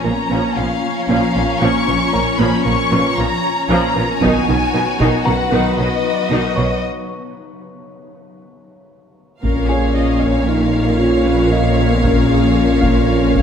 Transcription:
Already playing: ambient pad F3 C#4 F4 A#5, violin section C#4 C#5
0.04 double bass section A#1, cello section A#2, viola section F3 B3, synth pluck A#4, violin section A#5
0.30 double bass section A#1, cello section A#2, viola section F3 C#4, synth pluck A#3
0.56 double bass section A#1, cello section A#2, viola section F3 B3, synth pluck F4, violin section F5
1.09 double bass section A#1, cello section A#2, viola section F3 C#4, synth pluck A#3, violin section F5
1.35 double bass section A#1, cello section A#2, viola section F3 B3, synth pluck A#4
1.61 double bass section A#1, cello section A#2, viola section F3 C#4, synth pluck A#3, violin section C#6
1.87 double bass section A#1, cello section A#2, viola section F3 B3, synth pluck C#4
2.13 double bass section A#1, cello section A#2, viola section F3 C#4, synth pluck A#4, grand piano C#5 A#5
2.39 double bass section A#1, cello section A#2, viola section F3 C#4, synth pluck A#3, violin section B5
2.65 double bass section A#1, cello section A#2, viola section F3 B3, synth pluck A#4, violin section C#6
2.91 double bass section A#1, cello section A#2, viola section F3 C#4, synth pluck A#3, grand piano B4 C#6
3.17 double bass section A#1, cello section A#2, viola section F3 B3, synth pluck F4, violin section A#5
3.69 double bass section A#1, cello section A#2, viola section F3 C#4, synth pluck A#3, violin section A#5
3.96 double bass section A#1, cello section A#2, viola section F3 B3, synth pluck A#4
4.22 double bass section B1, cello section B2, viola section D#3 D#4, ambient pad F#3 B3 D#4 B4, synth pluck B3, violin section F#4 G#5, taiko
4.48 double bass section B1, cello section B2, viola section D#3 C#4, synth pluck D#4
4.73 double bass section B1, cello section B2, viola section D#3 D#4, synth pluck B4
5.00 double bass section B1, cello section B2, viola section D#3 D#4, synth pluck B3, taiko
5.25 double bass section B1, cello section B2, viola section D#3 C#4, synth pluck B4, violin section B4 F#5, grand piano A#5
5.52 double bass section B1, cello section B2, viola section D#3 D#4, synth pluck B3
5.78 double bass section B1, cello section B2, viola section D#3 C#4, synth pluck F#4, violin section D#5
6.30 double bass section B1, cello section B2, viola section D#3 D#4, synth pluck B3
6.56 double bass section B1, cello section B2, viola section D#3 C#4, synth pluck B4, grand piano C#5 C#6
9.43 double bass section A#1, sub bass A#1, trombone section F2 A#3, cello section A#2, ambient pad F3 C#4 F4 A#4, synth pluck A#3, french horn section C#4, viola section A#4, violin section C#5 F5, taiko
9.69 synth pluck F4, grand piano G#4 G#5, viola section C#5
9.95 synth pluck F4, viola section D#5
10.21 synth pluck A#3, viola section C#5, taiko
10.47 french horn section D#4, synth pluck F4, viola section A#4
10.73 synth pluck A#3
10.99 synth pluck C#4, french horn section F4, viola section C#5
11.26 synth pluck C#4, viola section B4
11.51 synth pluck A#3, french horn section A#3, viola section C#5, grand piano D#5
11.78 synth pluck A#4
11.91 french horn section B3
12.04 synth pluck A#3, french horn section C#4, viola section A#4, taiko
12.29 synth pluck F4, viola section G#4
12.56 synth pluck F4, viola section A#4
12.81 synth pluck A#3, grand piano F4 F5, taiko
13.08 french horn section C#4, synth pluck F4, viola section A#4
13.34 synth pluck A#3, viola section C#5, taiko

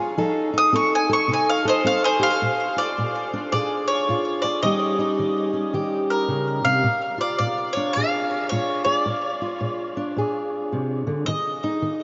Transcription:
Already playing: steel-string acoustic guitar F3 F4 G#4, mandolin G#4
0.18 steel-string acoustic guitar F3 D#4 A4
0.53 steel-string acoustic guitar D#4
0.58 mandolin D#6
0.73 steel-string acoustic guitar C4 A4, mandolin C#6
0.95 mandolin G#5
1.09 steel-string acoustic guitar A4, mandolin C#6
1.28 steel-string acoustic guitar C3 D#4
1.33 mandolin G#5
1.49 mandolin F5
1.65 steel-string acoustic guitar A4, mandolin D#5
1.69 mandolin C5
1.84 steel-string acoustic guitar C4 A4, mandolin F5
2.04 mandolin G#4 C5
2.20 steel-string acoustic guitar G4, mandolin F5
2.30 steel-string acoustic guitar A4
2.42 steel-string acoustic guitar A#2
2.76 steel-string acoustic guitar F4, mandolin D5
2.98 steel-string acoustic guitar A#2
3.33 steel-string acoustic guitar D4
3.52 steel-string acoustic guitar A#2 G#4, mandolin D5
3.88 mandolin C#5
4.09 steel-string acoustic guitar A#2 F4
4.42 steel-string acoustic guitar G#4, mandolin D5
4.63 steel-string acoustic guitar D#3 G3 C#4 D#4 G4, mandolin D#5
4.99 steel-string acoustic guitar D#4
5.19 steel-string acoustic guitar D#3
5.53 steel-string acoustic guitar C#4
5.73 steel-string acoustic guitar D#3 G4
6.10 mandolin A#4
6.28 steel-string acoustic guitar C#3
6.64 steel-string acoustic guitar C3, mandolin F5
6.83 steel-string acoustic guitar A#2
7.18 steel-string acoustic guitar F4, mandolin D5
7.38 steel-string acoustic guitar A#2, mandolin D5
7.73 steel-string acoustic guitar D4, mandolin C#5
7.93 steel-string acoustic guitar A#2, mandolin F5
7.98 steel-string acoustic guitar G#4
8.49 steel-string acoustic guitar A#2 F4, mandolin C#5
8.85 steel-string acoustic guitar G#4, mandolin D5
9.06 steel-string acoustic guitar A#2
9.42 steel-string acoustic guitar F4
9.61 steel-string acoustic guitar A#2
9.97 steel-string acoustic guitar D4
10.16 steel-string acoustic guitar A#2 G#4
10.72 steel-string acoustic guitar C3
11.07 steel-string acoustic guitar D3
11.26 steel-string acoustic guitar D#3, mandolin D#5
11.64 steel-string acoustic guitar D#4
11.82 steel-string acoustic guitar D#3

